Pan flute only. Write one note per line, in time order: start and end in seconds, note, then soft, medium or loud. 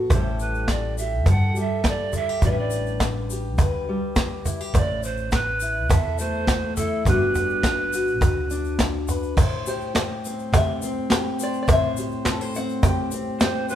0.11 0.38 C5 medium
0.40 0.71 B4 medium
0.69 0.98 D5 medium
0.98 1.25 E5 medium
1.29 1.61 F#5 medium
1.60 1.90 E5 medium
1.89 2.16 D5 medium
2.16 2.46 E5 loud
2.45 2.53 D5 medium
2.51 2.60 E5 medium
2.59 3.02 D5 medium
4.76 5.03 D5 loud
5.05 5.35 C5 medium
5.33 5.92 B4 medium
5.91 6.21 E5 medium
6.20 6.77 C5 loud
6.76 7.05 A4 loud
7.07 8.76 B4 medium
13.39 13.67 C5 medium
13.69 13.75 B4 loud